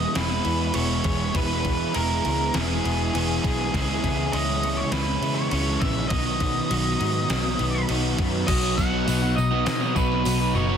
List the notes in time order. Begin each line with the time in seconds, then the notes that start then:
Already playing: E2 E3 G#3 B3 E4 G#4 D#5
0.15 E1 E3 G#3 B3 E4 G#4 B4, snare, crash
0.44 E2 G#3 B3 E4, crash
0.74 E1 E3 G#3 B3 E4 G#4 C#5, crash
1.04 E1 E3 G#3 B3 G#4, kick, crash
1.34 E1 E2 B2 E3 G#3 B3 E4 G#4 B4, kick, crash
1.64 B3, kick, crash
1.94 E1 E3 G#3 B3 E4 G#4 A#4, crash
2.24 C#2 E3 G#3 B3 G#4, crash
2.54 E1 E3 G#3 B3 E4 G#4, snare, crash
2.84 E1 G#3 B3 E4, crash
3.14 E1 E3 G#3 B3 E4 G#4, crash
3.44 B1 E3 G#3 B3 G#4, kick, crash
3.74 C#2 C#3 E3 G#3 C#4 E4 G#4, kick, crash
4.03 C#2 B3, kick, crash
4.33 C#2 C#3 E3 G#3 C#4 E4 G#4 D#5, crash
4.63 G#3 C#4 E4, crash
4.77 C#5
4.91 C#2 C#3 E3 G#3 C#4 E4 B4, snare, crash
5.22 C#3 G#3 B3 C#4 E4, crash
5.35 C#5
5.50 C#2 C#3 E3 C#5, crash
5.54 G#3 C#4 E4
5.80 A#1 G#3 B3 C#4 E4 E5, kick, snare, crash
6.08 B1 B2 D#3 F#3 D#5, kick, crash
6.13 B3 D#4 F#4
6.40 B3, kick, crash
6.70 B1 D#3 F#3 B3 D#4 F#4, crash
7.00 G#2 B3 D#4 F#4, crash
7.28 B1 B2 D#3 F#3 B3 D#4 F#4, snare, crash
7.59 B1 F#3 B3 D#4, crash
7.88 B1 D#3 F#3 B3 D#4 F#4, crash
8.18 F#2 B3 D#4 F#4, kick, snare, crash
8.47 B1 B2 F#3 B3 D#4 F#4 D#5, kick, open hi-hat, crash, tambourine
8.77 B2 F#3 B3 D#4 F#5, kick, tambourine
8.92 F#3 B3 D#4
9.07 B1 B2 F#3 B3 D#4 F#4, open hi-hat, tambourine
9.21 B3 D#4 F#4
9.36 B1 D#4 D#5, muted overdriven electric guitar stroke, tambourine
9.51 F#3 B3 D#4 F#4
9.66 B2 B3 D#5, snare, open hi-hat, tambourine
9.81 F#3 B3 D#4 F#4
9.94 B1 B2 F#3 B3 D#4 B4, kick, tambourine
9.98 F#4
10.12 snare
10.25 B1 B2 F#3 B3 D#4 F#4, open hi-hat, tambourine
10.40 F#3 B3 D#4 F#4
10.54 F#1 B2 F#3 B3 D#4 C#5, tambourine
10.58 F#4
10.68 F#3 D#4 F#4
10.72 B3 D#4